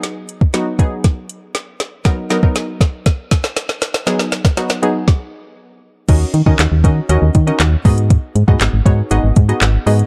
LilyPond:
<<
  \new Staff \with { instrumentName = "Synth pluck" } { \time 4/4 \key aes \dorian \tempo 4 = 119 <ges ces' ees' aes'>8. r16 <ges ces' ees' ges'>16 r16 <ges ces' ees' aes'>4~ <ges ces' ees' aes'>16 r4 r16 | <fis b dis' ais'>16 r16 <fis b dis' ais'>16 <fis b dis' ais'>4~ <fis b dis' ais'>16 r2 | <ges ces' ees' aes'>8 r8 <ges ces' ees' ges'>16 r16 <ges ces' ees' aes'>8 r2 | <des' ees' ges' bes' ees''>8 r16 <des' ees' ges' bes' ees''>8 r16 <des' ees' ges' bes' ees''>16 r16 <des' ees' ges' bes' ees''>8 r16 <des' ees' ges' bes' ees''>8 r16 <ces' ees' ges' aes' ees''>8~ |
<ces' ees' ges' aes' ees''>8 r16 <ces' ees' ges' aes' ees''>8 r16 <ces' ees' ges' aes' des''>16 r16 <ces' ees' ges' aes' ees''>8 r16 <ces' ees' ges' aes' ees''>8 r16 <ces' ees' ges' aes' ees''>16 r16 | }
  \new Staff \with { instrumentName = "FM bass" } { \clef bass \time 4/4 \key aes \dorian r1 | r1 | r1 | ees,8 ees16 ees16 ees,16 ees,16 ees8 ees,16 ees,16 ees8 ees,8 aes,8~ |
aes,8 aes,16 aes,16 aes,,16 aes,,16 aes,8 aes,,16 aes,,16 aes,8 aes,,8 aes,8 | }
  \new DrumStaff \with { instrumentName = "Drums" } \drummode { \time 4/4 <hh sn>8 hh16 bd16 <hh sn>8 <hh bd>8 <hh bd sn>8 hh8 <hh sn>8 <hh sn>8 | <hh bd sn>8 <hh sn>16 bd16 <hh sn>8 <hh bd sn>8 <hh bd sn>8 <hh bd sn>16 sn16 <hh sn>16 sn16 <hh sn>16 sn16 | <hh sn>16 sn16 <hh sn>16 <bd sn>16 <hh sn>16 <hh sn>16 hh8 <bd sn>4 r4 | <cymc hh bd>8 hh16 bd16 <hc hh sn>8 <hh bd>8 hh8 <hh bd>16 hh16 <hc hh sn>8 <hho bd>16 hh16 |
<hh bd>8 hh16 bd16 <hc hh sn>8 <hh bd>8 hh8 <hh bd>16 hh16 <hc hh sn>8 hho16 hh16 | }
>>